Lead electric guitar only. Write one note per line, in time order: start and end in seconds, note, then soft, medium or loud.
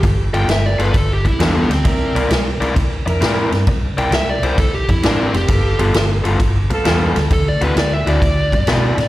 0.34 0.49 G5 medium
0.50 0.66 E5 medium
0.66 0.80 D5 medium
0.82 0.97 B4 medium
0.97 1.10 A4 medium
1.13 1.26 G4 medium
1.27 1.42 E4 medium
1.42 1.56 D4 medium
1.57 1.71 B3 medium
1.74 2.16 C4 medium
3.99 4.13 G5 medium
4.15 4.29 E5 medium
4.30 4.43 D5 medium
4.43 4.59 C5 medium
4.59 4.74 A4 medium
4.74 4.89 G4 medium
4.91 5.06 E4 medium
5.06 5.20 D4 medium
5.20 5.34 C4 medium
5.36 5.79 G4 medium
7.33 7.47 A4 medium
7.48 7.64 D5 medium
7.64 7.77 B4 medium
7.79 7.93 D5 medium
7.93 8.09 E5 medium
8.09 9.08 D5 loud